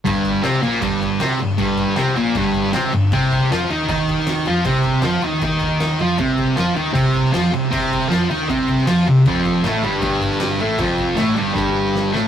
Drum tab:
CC |x-x-x-x-x-x-x-x-|x-x-x-x-x-x-x-x-|x-x-x-x-x-x-x-x-|x-x-x-x-x-x-x-x-|
SD |----o-------o---|----o------oo---|----o------oo---|----o-------o---|
BD |o-o-----o-o-----|o-o-----o-o-----|o-o-----o-o-----|o-o-----o-o-----|

CC |x-x-x-x-x-x-x-x-|x-x-x-x-x-x-x-x-|x-x-x-x-x-x-x-x-|x-x-x-x---------|
SD |----o------oo---|----o------oo---|----o------oo---|----o---o---o-o-|
BD |o-o-----o-o-----|o-o-----o-o-----|o-o-----o-o-----|o-o-----o-------|